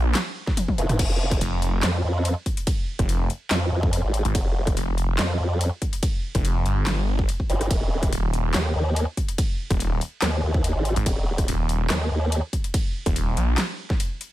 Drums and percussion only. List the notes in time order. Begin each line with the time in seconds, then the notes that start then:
0.15 snare, clap, closed hi-hat, ride
0.47 kick, snare
0.57 closed hi-hat, high tom, ride
0.68 kick, high tom
0.78 closed hi-hat
0.89 cross-stick, closed hi-hat, mid tom
0.99 kick, closed hi-hat, crash, ride
1.31 kick, cross-stick, closed hi-hat
1.41 closed hi-hat, ride
1.62 closed hi-hat
1.83 snare, clap, closed hi-hat, ride
1.94 cross-stick
2.25 closed hi-hat, ride
2.46 kick, closed hi-hat
2.57 closed hi-hat
2.67 kick, closed hi-hat, ride
2.99 kick, cross-stick, closed hi-hat
3.09 closed hi-hat, ride
3.30 closed hi-hat
3.51 snare, clap, closed hi-hat, ride
3.83 kick
3.93 closed hi-hat, ride
4.14 closed hi-hat
4.25 closed hi-hat
4.35 kick, closed hi-hat, ride
4.67 kick, cross-stick, closed hi-hat
4.77 closed hi-hat, ride
4.98 closed hi-hat
5.19 snare, clap, closed hi-hat, ride
5.30 cross-stick
5.61 closed hi-hat, ride
5.82 kick, closed hi-hat
5.93 closed hi-hat
6.03 kick, closed hi-hat, ride
6.35 kick, cross-stick, closed hi-hat
6.45 closed hi-hat, ride
6.66 closed hi-hat
6.87 snare, clap, closed hi-hat, ride
7.19 kick
7.29 closed hi-hat, ride
7.40 kick
7.50 closed hi-hat
7.61 cross-stick, closed hi-hat
7.71 kick, closed hi-hat, ride
8.03 kick, cross-stick, closed hi-hat
8.13 closed hi-hat, ride
8.33 closed hi-hat
8.54 snare, clap, closed hi-hat, ride
8.66 cross-stick
8.96 closed hi-hat, ride
9.17 kick, closed hi-hat
9.28 closed hi-hat
9.38 kick, closed hi-hat, ride
9.70 kick, cross-stick, closed hi-hat
9.80 closed hi-hat, ride
10.01 closed hi-hat
10.22 snare, clap, closed hi-hat, ride
10.54 kick
10.64 closed hi-hat, ride
10.85 closed hi-hat
10.96 closed hi-hat
11.06 kick, closed hi-hat, ride
11.38 kick, cross-stick, closed hi-hat
11.48 closed hi-hat, ride
11.69 closed hi-hat
11.90 snare, clap, closed hi-hat, ride
12.01 cross-stick
12.32 closed hi-hat, ride
12.53 kick, closed hi-hat
12.64 closed hi-hat
12.74 kick, closed hi-hat, ride
13.06 kick, cross-stick, closed hi-hat
13.16 closed hi-hat, ride
13.37 closed hi-hat
13.58 snare, clap, closed hi-hat, ride
13.90 kick, snare
14.00 closed hi-hat, ride
14.21 closed hi-hat